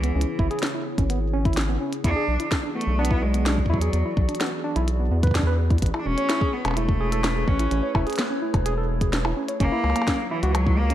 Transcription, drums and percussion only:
0.04 closed hi-hat medium
0.21 closed hi-hat medium
0.39 kick loud
0.51 closed hi-hat soft
0.59 snare loud
0.59 closed hi-hat soft
0.63 closed hi-hat medium
0.67 closed hi-hat soft
0.98 kick loud
0.98 closed hi-hat medium
1.10 closed hi-hat medium
1.45 kick loud
1.45 closed hi-hat soft
1.53 snare loud
1.53 closed hi-hat soft
1.57 closed hi-hat medium
1.61 closed hi-hat soft
1.93 closed hi-hat medium
2.04 kick loud
2.04 closed hi-hat medium
2.40 closed hi-hat medium
2.52 kick loud
2.52 snare loud
2.52 closed hi-hat medium
2.81 closed hi-hat medium
3.05 closed hi-hat medium
3.11 kick loud
3.34 closed hi-hat soft
3.46 snare loud
3.46 closed hi-hat medium
3.58 kick soft
3.66 kick medium
3.74 kick medium
3.81 closed hi-hat medium
3.93 closed hi-hat medium
4.17 kick loud
4.29 closed hi-hat soft
4.35 closed hi-hat soft
4.41 snare loud
4.41 closed hi-hat medium
4.46 closed hi-hat soft
4.76 closed hi-hat medium
4.88 closed hi-hat medium
5.23 kick loud
5.23 closed hi-hat soft
5.27 kick medium
5.31 kick medium
5.31 snare loud
5.31 closed hi-hat medium
5.35 kick medium
5.39 kick medium
5.43 kick soft
5.70 kick loud
5.70 closed hi-hat soft
5.78 kick loud
5.78 closed hi-hat soft
5.82 closed hi-hat medium
5.86 closed hi-hat soft
5.94 percussion blips soft
6.18 closed hi-hat soft
6.30 snare loud
6.30 closed hi-hat medium
6.41 kick loud
6.65 closed hi-hat medium
6.65 percussion blips medium
6.68 percussion blips medium
6.71 percussion blips soft
6.74 closed hi-hat medium
6.74 percussion blips soft
6.89 kick loud
7.12 closed hi-hat soft
7.24 snare loud
7.24 closed hi-hat medium
7.24 percussion blips soft
7.48 kick loud
7.59 closed hi-hat soft
7.71 closed hi-hat medium
7.95 kick loud
7.95 percussion blips medium
8.07 closed hi-hat soft
8.10 closed hi-hat soft
8.13 closed hi-hat soft
8.16 snare loud
8.16 closed hi-hat soft
8.19 closed hi-hat medium
8.54 kick loud
8.54 closed hi-hat soft
8.54 percussion blips soft
8.66 closed hi-hat medium
9.01 kick loud
9.01 closed hi-hat soft
9.13 snare loud
9.13 closed hi-hat medium
9.25 percussion blips medium
9.48 closed hi-hat soft
9.60 kick loud
9.60 closed hi-hat medium
9.84 percussion blips soft
9.90 percussion blips soft
9.96 closed hi-hat medium
9.96 percussion blips soft
10.02 percussion blips soft
10.08 kick loud
10.08 snare loud
10.08 closed hi-hat medium
10.43 closed hi-hat soft
10.55 closed hi-hat medium
10.55 percussion blips medium
10.67 kick loud
10.90 closed hi-hat medium

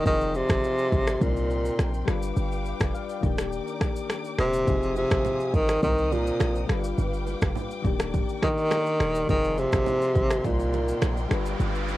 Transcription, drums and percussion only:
0.06 kick loud
0.06 shaker medium
0.21 shaker soft
0.35 shaker medium
0.49 finger snap medium
0.49 kick loud
0.49 cross-stick loud
0.49 shaker medium
0.64 shaker medium
0.78 shaker medium
0.92 kick medium
0.92 shaker soft
1.07 finger snap medium
1.07 cross-stick medium
1.07 shaker medium
1.21 kick medium
1.21 shaker medium
1.37 shaker soft
1.50 shaker soft
1.65 shaker medium
1.79 finger snap medium
1.79 cross-stick medium
1.79 shaker medium
1.94 shaker medium
2.08 finger snap medium
2.08 cross-stick medium
2.08 shaker soft
2.23 shaker loud
2.37 shaker medium
2.52 shaker soft
2.65 shaker medium
2.80 finger snap medium
2.80 kick loud
2.80 cross-stick loud
2.80 shaker medium
2.95 shaker medium
3.09 shaker medium
3.23 kick medium
3.23 shaker soft
3.38 finger snap medium
3.38 cross-stick medium
3.38 shaker medium
3.52 shaker medium
3.67 shaker medium
3.81 finger snap medium
3.81 kick medium
3.81 cross-stick medium
3.81 shaker medium
3.96 shaker medium
4.10 finger snap medium
4.10 cross-stick medium
4.10 shaker medium
4.25 shaker soft
4.39 finger snap medium
4.39 cross-stick medium
4.39 shaker soft
4.53 shaker loud
4.67 kick medium
4.67 low conga medium
4.67 shaker medium
4.83 shaker soft
4.96 high bongo medium
4.96 shaker medium
5.11 finger snap medium
5.11 kick loud
5.11 cross-stick loud
5.11 low bongo medium
5.11 shaker medium
5.25 high bongo medium
5.25 low conga medium
5.25 shaker medium
5.40 shaker medium
5.54 kick medium
5.54 shaker soft
5.69 finger snap medium
5.69 cross-stick medium
5.69 shaker medium
5.83 kick loud
5.83 low conga medium
5.83 shaker medium
5.98 shaker soft
6.12 low bongo medium
6.12 shaker soft
6.27 shaker medium
6.40 finger snap medium
6.40 cross-stick medium
6.40 high bongo medium
6.40 low bongo medium
6.40 shaker medium
6.55 shaker soft
6.69 finger snap medium
6.69 cross-stick medium
6.69 shaker soft
6.84 shaker loud
6.98 low conga medium
6.98 shaker medium
7.13 shaker medium
7.27 high bongo medium
7.27 shaker medium
7.41 finger snap medium
7.41 kick loud
7.41 cross-stick loud
7.41 low bongo medium
7.41 shaker medium
7.55 high bongo medium
7.55 low conga medium
7.55 shaker medium
7.71 shaker medium
7.84 kick medium
7.84 shaker soft
8.00 finger snap medium
8.00 cross-stick loud
8.00 shaker medium
8.14 kick loud
8.14 low conga medium
8.14 shaker medium
8.29 shaker medium
8.42 finger snap medium
8.42 kick medium
8.42 cross-stick medium
8.42 low bongo medium
8.42 shaker soft
8.58 shaker medium
8.71 finger snap medium
8.71 cross-stick medium
8.71 high bongo medium
8.71 low bongo medium
8.71 shaker medium
8.86 shaker soft
9.00 finger snap medium
9.00 cross-stick medium
9.00 shaker soft
9.15 shaker loud
9.29 kick loud
9.29 low conga medium
9.29 shaker medium
9.44 shaker soft
9.57 high bongo medium
9.57 shaker medium
9.72 finger snap medium
9.72 kick medium
9.72 cross-stick loud
9.72 low bongo medium
9.72 shaker medium
9.86 high bongo medium
9.86 low conga medium
9.86 shaker medium
10.02 shaker medium
10.15 kick medium
10.15 shaker soft
10.30 finger snap medium
10.30 cross-stick medium
10.30 shaker medium
10.45 kick loud
10.45 low conga medium
10.45 shaker medium
10.60 shaker soft
10.73 low bongo medium
10.73 shaker soft
10.88 shaker medium
11.02 finger snap medium
11.02 cross-stick medium
11.02 high bongo medium
11.02 low bongo medium
11.02 shaker medium
11.17 shaker soft
11.31 finger snap medium
11.31 cross-stick medium
11.31 shaker soft
11.46 shaker loud
11.60 low conga medium
11.60 shaker medium
11.75 shaker soft
11.88 high bongo medium
11.88 shaker medium

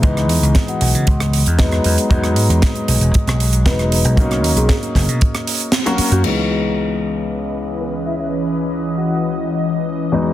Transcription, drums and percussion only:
0.03 kick loud
0.03 closed hi-hat medium
0.17 cross-stick medium
0.17 closed hi-hat soft
0.29 open hi-hat loud
0.43 closed hi-hat medium
0.55 kick loud
0.55 snare medium
0.55 closed hi-hat medium
0.68 closed hi-hat soft
0.81 open hi-hat loud
0.95 closed hi-hat medium
1.07 kick loud
1.07 closed hi-hat medium
1.20 cross-stick medium
1.20 closed hi-hat soft
1.33 open hi-hat loud
1.46 closed hi-hat medium
1.59 kick loud
1.59 snare loud
1.59 closed hi-hat medium
1.72 cross-stick medium
1.72 closed hi-hat soft
1.84 open hi-hat medium
1.98 closed hi-hat medium
2.11 kick loud
2.11 closed hi-hat medium
2.24 cross-stick medium
2.24 closed hi-hat soft
2.36 open hi-hat loud
2.50 closed hi-hat medium
2.62 kick loud
2.62 snare loud
2.62 closed hi-hat medium
2.75 closed hi-hat soft
2.88 open hi-hat loud
3.01 closed hi-hat medium
3.14 kick loud
3.14 closed hi-hat medium
3.27 cross-stick medium
3.27 snare soft
3.27 closed hi-hat soft
3.40 open hi-hat medium
3.53 closed hi-hat medium
3.66 kick loud
3.66 snare loud
3.66 closed hi-hat medium
3.79 cross-stick medium
3.79 closed hi-hat soft
3.92 open hi-hat loud
4.05 closed hi-hat medium
4.17 kick loud
4.17 closed hi-hat medium
4.31 cross-stick medium
4.31 closed hi-hat soft
4.44 open hi-hat loud
4.57 closed hi-hat medium
4.69 kick loud
4.69 snare loud
4.69 closed hi-hat medium
4.83 closed hi-hat soft
4.95 kick medium
4.95 snare soft
4.95 open hi-hat loud
5.09 closed hi-hat medium
5.21 kick loud
5.21 closed hi-hat medium
5.34 cross-stick medium
5.34 closed hi-hat soft
5.47 open hi-hat loud
5.60 closed hi-hat medium
5.72 snare loud
5.72 closed hi-hat medium
5.86 cross-stick medium
5.86 closed hi-hat soft
5.98 open hi-hat loud
6.12 closed hi-hat medium
6.24 crash medium

